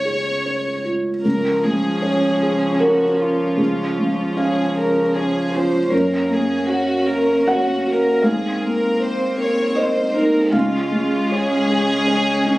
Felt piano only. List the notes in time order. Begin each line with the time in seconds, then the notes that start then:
Already playing: C#2 G#3 C#5
0.05 G#4
0.46 C#5
0.85 F4
1.25 C#2
1.64 G#3
2.02 C#5
2.43 G#4
2.80 A#4 C#5
3.19 F4
3.57 C#2 G#4
3.98 G#3
4.37 C#5 F5
4.78 G#4
5.16 C#5
5.54 F4
5.90 F#2 C#5
6.30 A#3
6.68 C#5
7.07 A#4
7.47 C#5 F#5
7.86 F#4
8.22 G#2 F5
8.63 A#3
9.00 C5
9.38 A#4
9.76 C5 D#5
10.14 D#4
10.52 C#2 F5
10.92 G#3
11.32 C#5
11.70 G#4
12.07 C#5
12.46 C#4